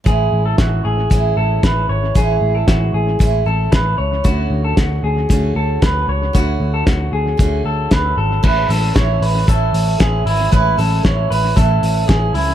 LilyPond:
<<
  \new Staff \with { instrumentName = "Clean electric guitar" } { \time 4/4 \key a \major \tempo 4 = 115 gis'8. a'16 fis'8 gis'4 a'8 b'8 cis''8 | gis'8. a'16 fis'8 gis'4 a'8 b'8 cis''8 | fis'8. a'16 fis'8 gis'4 a'8 b'8 cis''8 | fis'8. a'16 fis'8 gis'4 a'8 b'8 a'8 |
b'8 a'8 cis''8 b'8 a'4 gis'8 e'8 | b'8 a'8 cis''8 b'8 a'4 gis'8 e'8 | }
  \new Staff \with { instrumentName = "Steel-string acoustic guitar" } { \time 4/4 \key a \major <a, e gis cis' e'>2 <a, e gis cis' e'>2 | <a, e gis cis' e'>2 <a, e gis cis' e'>8 <gis cis' e'>4. | <d a cis' fis'>2 <d a cis' fis'>2 | <d a cis' fis'>2 <d a cis' fis'>2 |
<a, e gis cis' e'>8 <gis cis' e'>8 <e gis cis' e'>4 <a, e cis' e'>4 <e gis cis' e'>4 | <a, e gis cis' e'>8 <gis cis' e'>8 <e gis cis' e'>4 <a, e cis' e'>4 <e gis cis' e'>8 <gis cis' e'>8 | }
  \new Staff \with { instrumentName = "Picked electric bass" } { \clef bass \time 4/4 \key a \major a,,8 a,,8 a,,8 a,,8 a,,8 a,,8 a,,8 gis,,8 | a,,8 a,,8 a,,8 a,,8 a,,8 a,,8 a,,8 cis,8 | d,8 d,8 d,8 d,8 d,8 d,8 d,8 cis,8 | d,8 d,8 d,8 d,8 d,8 d,8 d,8 gis,,8 |
a,,8 a,,8 a,,8 a,,8 a,,8 a,,8 a,,8 gis,,8 | a,,8 a,,8 a,,8 a,,8 a,,8 a,,8 a,,8 cis,8 | }
  \new DrumStaff \with { instrumentName = "Drums" } \drummode { \time 4/4 <hh bd>4 <hh bd sn>4 <hh bd>4 <hh bd sn>4 | <hh bd>4 <hh bd sn>4 <hh bd>4 <hh bd sn>4 | <hh bd>4 <hh bd sn>4 <hh bd>4 <hh bd sn>4 | <hh bd>4 <hh bd sn>4 <hh bd>4 <hh bd sn>4 |
<cymc bd>8 hho8 <hh bd sn>8 hho8 <hh bd>8 hho8 <hh bd sn>8 hho8 | <hh bd>8 hho8 <hh bd sn>8 hho8 <hh bd>8 hho8 <hh bd sn>8 hho8 | }
>>